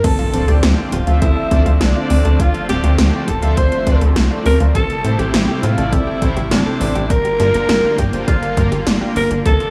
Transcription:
0.04 D2 D3 F3 A3 C4 A4 A5, kick, closed hi-hat, crash, impact
0.19 F4, closed hi-hat
0.33 D1 C4 D4 F4 A4 C5 D5, closed hi-hat
0.48 D2 G4 A4 G5, closed hi-hat
0.63 D2 C4, snare, closed hi-hat
0.78 D4 F4 A4 C5 D5
0.92 D1 C4 F4 F5, closed hi-hat
1.07 D2 D4 F4 A4 C5 E5, closed hi-hat
1.22 D2 C4 E4 E5, kick, closed hi-hat
1.36 A4
1.51 D2 C4 D4 F4 A4 C5 D5, kick, closed hi-hat
1.66 D2 F4, closed hi-hat
1.80 C2 C4 D4 D5, snare, closed hi-hat
1.95 D4 F4 A4 C5 D5
2.10 D2 C4, open hi-hat
2.25 D2 A4, closed hi-hat
2.39 D2 C4 F4 F5, kick, closed hi-hat
2.54 F4, closed hi-hat
2.69 D1 C4 D4 F4 G4 A4 C5 D5 G5, snare, closed hi-hat
2.84 D2 F4, closed hi-hat
2.98 D2 C4, snare, closed hi-hat
3.13 D4 F4 A4 C5 D5
3.28 D1 C4 A4 A5, kick, closed hi-hat
3.42 D2 D4 F4 A4 C5 E5, closed hi-hat
3.57 D2 C4 C5 C6, kick, closed hi-hat
3.72 F4, closed hi-hat
3.87 D2 C4 D4 F4 A4 C5 D5, kick, closed hi-hat
4.01 D2 A4, closed hi-hat
4.16 C2 C4, snare, closed hi-hat
4.31 D4 F4 A4 C5 D5
4.45 D2 C4 A#4 A#5, open hi-hat
4.60 D2 F4, closed hi-hat
4.75 A1 C3 G3 C4 E4 A4 A5, kick, closed hi-hat
4.90 A4, closed hi-hat
5.04 A2 C4 E4 G4 A4 C5, closed hi-hat
5.19 A1 G4 G5, closed hi-hat
5.34 A1 C4, snare, closed hi-hat
5.48 C4 E4 G4 A4 C5
5.63 A2 C4 F4 F5, closed hi-hat
5.78 A1 C4 E4 G4 A4 D5, closed hi-hat
5.92 A1 C4 E4 E5, kick, closed hi-hat
6.07 G4
6.22 A1 C4 E4 G4 A4 C5, kick, closed hi-hat
6.37 A1 G4, closed hi-hat
6.51 G1 C4 D4 D5, snare, closed hi-hat
6.66 C4 E4 G4 A4 C5
6.81 A1 C4, open hi-hat
6.95 A1 G4, closed hi-hat
7.10 G1 D3 G3 A#3 D4 F4 A#4 A#5, kick, closed hi-hat
7.25 G4, closed hi-hat
7.39 G2 A#3 D4 F4 G4 A#4, snare, closed hi-hat
7.54 G1 A#4, closed hi-hat
7.69 G1 D4, snare, closed hi-hat
7.84 A#3 D4 F4 G4 A#4
7.98 G2 D4 G4 G5, kick, closed hi-hat
8.13 G1 A#3 D4 F4 G4 C5, closed hi-hat
8.28 G1 D4 F4 F5, kick, closed hi-hat
8.42 A#4, closed hi-hat
8.57 G2 A#3 D4 F4 G4 A#4, kick, closed hi-hat
8.72 G1 G4, closed hi-hat
8.87 G1 D4, snare, closed hi-hat
9.01 A#3 D4 F4 G4 A#4
9.16 G1 D4 A#4 A#5, open hi-hat
9.31 G1 A#4, closed hi-hat
9.45 D2 C3 F3 A3 C4 D4 A4 A5, kick, closed hi-hat
9.60 F4, closed hi-hat

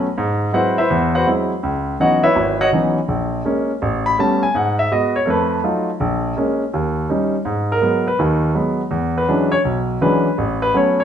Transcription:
0.18 G#2
0.52 F#3 G#3 C4 E4 F#4 B4 C5 F#5
0.78 E4 B4 C5 E5
0.90 E2
1.15 F#4 B4 C5 F#5
1.26 F#3 G#3 C4 E4
1.63 C#2
2.00 E3 F#3 B3 C#4 D#4 F#4 C#5 D#5 F#5
2.23 E4 B4 C#5 E5
2.36 G#1
2.61 F#4 C#5 D#5 F#5
2.72 E3 F#3 B3 C#4 D#4
3.08 A#1
3.45 G#3 A#3 C#4
3.82 A1
4.06 B5
4.18 G3 A3 B3 C#4 A5
4.43 G#5
4.55 G#2 F#5
4.79 E5
4.92 G#3 B3 F#4 D#5
5.16 C#5
5.26 F2 A3 A#4
5.30 B4
5.63 F#3 A3 D#4 F4
6.00 A#1
6.37 G#3 A#3 C#4
6.74 D#2
7.09 G3 C#4 D#4
7.45 G#2
7.72 A#4
7.82 F#3 G#3 B3
8.08 B4
8.19 D#2 D#3
8.55 F#3 G#3 B3
8.91 E2
9.18 B4
9.28 E3 F#3 G#3 C#4 D4
9.52 C#5
9.65 B1
10.01 E3 F#3 G#3 C#4 D4 B4
10.38 A1
10.62 B4
10.74 F#3 A3 B3 C#4 C#5
11.00 C#5

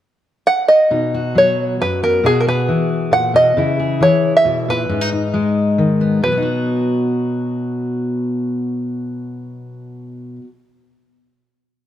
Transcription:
0.47 F#5
0.68 D#5
0.91 B2 D#4
1.14 F#4
1.35 F#3 C#5
1.80 F#2 B4
2.03 B3 A#4
2.24 B2 F#4 G#4
2.40 A#4
2.47 G#4 B4
2.68 E3
3.11 A#2 F#5
3.34 B2 D#5
3.57 C#3 E4
3.79 G#4
4.00 E3 C#5
4.37 E5
4.45 B2
4.68 A#2 B4
4.89 G#2 C#4
5.01 D#4
5.12 D#4
5.34 G#3
5.78 D#3
6.01 B3
6.22 B2 B4
6.27 F#3
6.32 B3
6.37 D#4
6.42 F#4

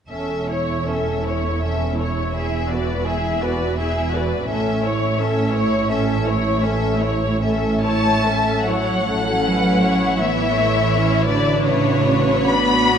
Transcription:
0.08 E1 E2 C#4 A4 E5
0.47 E4 C#5
0.86 C#4 A4 E5
1.24 E4 C#5
1.60 C#4 A4 E5
1.98 E4 C#5
2.33 E4 G#4 E5
2.69 F#4 B4 D5
3.04 E4 G#4 E5
3.41 F#4 B4 D5
3.76 E4 G#4 E5
4.11 F#4 B4 D5
4.45 A1 A2 C#4 A4 E5
4.82 E4 C#5
5.18 C#4 A4 E5
5.51 E4 C#5
5.89 C#4 A4 E5
6.25 E4 C#5
6.63 C#4 A4 E5
7.01 E4 C#5
7.41 C#4 A4 E5
7.80 A3 E4 C#5 A5
8.21 C#4 A4 E5
8.64 F#3 E4 C#5 F#5
9.05 A1 A3 C#4 E4 A4
9.46 B4
9.81 C#5
10.18 E3 B3 C#5 E5
10.56 A3
10.92 C#4
11.26 D3 F#3 D4 B4 D5
11.64 C#3 C#5
12.46 B3 D4 F#4 B5

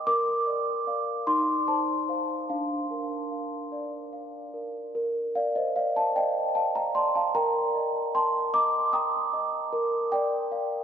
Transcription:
0.07 A#4 D6
0.47 D5
0.87 D5 F5
1.27 D#4 C6
1.68 C5 A5
2.09 C5 F5
2.50 D4 F5
2.91 A#4
3.31 F5
3.72 D5
4.13 F5
4.54 A#4
4.95 A#4
5.35 D5 F5
5.56 C5 D#5
5.76 D5 F5
5.96 F5 A5
6.16 D5 D#5 G5
6.55 F5 A5
6.75 G5 A#5
6.95 D5 A5 C6
7.15 F5 A5
7.35 A#4 G5 A#5
7.75 D#5
8.15 G5 A5 C6
8.54 D#5 A#5 D6
8.93 G5 A#5 D#6
9.33 D#5
9.73 A#4
10.12 D5 G5
10.52 D5 F5

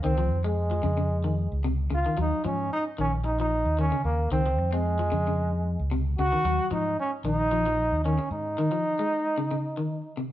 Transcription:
0.03 C#2 D#3 C4
0.18 F3
0.31 F2
0.44 G#3
0.71 F3
0.83 F2 C#3
0.97 C#3
1.24 D#3
1.52 C#2
1.64 C3
1.90 C#2 C#3 F4
2.06 D#3
2.17 D#2 F#3 D#4
2.45 G#2 F3 C#4
2.73 D#4
2.98 A#1 D#3 C#4
3.24 D#4, muted clean electric guitar stroke
3.40 F3 D#4
3.65 D#2
3.79 D#3 C#4
3.92 C#3
4.04 D#2 A#3
4.31 C#2 D#3 C4
4.46 muted clean electric guitar stroke
4.58 F2
4.73 G#3 C4
4.99 F3
5.12 F2 C#3
5.27 C#3
5.79 C#2
5.91 C3
6.17 C#2 C#3 F#4
6.32 D#3
6.44 D#2 F#3
6.71 G#2 F3 D#4
7.00 C#4
7.24 A#1 D#3 D#4
7.52 F3
7.66 F3
7.91 D#2
8.05 D#3 C#4
8.19 muted clean electric guitar stroke
8.31 G#2 D#4
8.58 D#3
8.72 F3
8.99 G#3
9.38 C#3
9.51 C#3
9.77 D#3
10.17 C3

